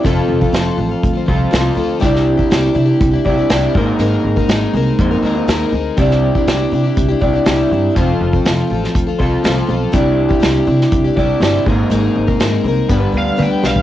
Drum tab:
HH |x---x---x---x---|x---x---x---x---|x---x---x---x---|x---x---x---x---|
SD |----o-------o---|-o--o-------o---|----o-------o---|-o--o-------o---|
T1 |----------------|----------------|----------------|----------------|
FT |----------------|----------------|----------------|----------------|
BD |o--o----o-o-----|o--o----o-o---o-|---o----o-------|o--o----o-o-----|

HH |x---x---x---x---|x---x---x---x---|x---x---x-------|
SD |----o--o----o---|----o--o----o---|----o---------o-|
T1 |----------------|----------------|------------o---|
FT |----------------|----------------|---------------o|
BD |o--o----o-o-----|o--o----o-o---o-|---o----o-------|